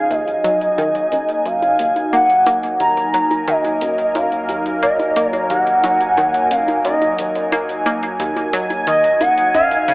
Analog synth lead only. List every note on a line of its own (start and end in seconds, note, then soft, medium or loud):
0.00 0.12 F5 loud
0.11 1.47 D#5 loud
1.46 2.12 F5 loud
2.13 2.60 F#5 loud
2.80 3.49 A#5 loud
3.48 4.17 D#5 loud
4.15 4.82 F5 loud
4.83 5.31 D#5 medium
5.31 5.46 C#5 medium
5.50 6.53 F#5 loud
6.51 6.84 F5 medium
6.85 7.48 D#5 medium
8.87 9.22 D#5 loud
9.21 9.54 F#5 loud
9.54 9.94 F5 loud